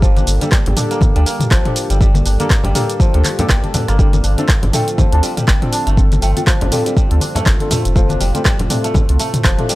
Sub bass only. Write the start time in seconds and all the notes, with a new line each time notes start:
Already playing: G1
0.27 G1
0.66 G1
1.16 D2
1.51 G1
1.90 G1
2.26 G1
2.65 G1
3.14 D2
3.49 G1
3.89 G1
4.24 G1
4.63 G1
5.12 D2
5.48 G1
5.87 G1
6.22 G1
6.61 G1
7.11 D2
7.46 G1
7.85 F1
8.21 F1
8.59 F1
9.09 C2
9.45 F1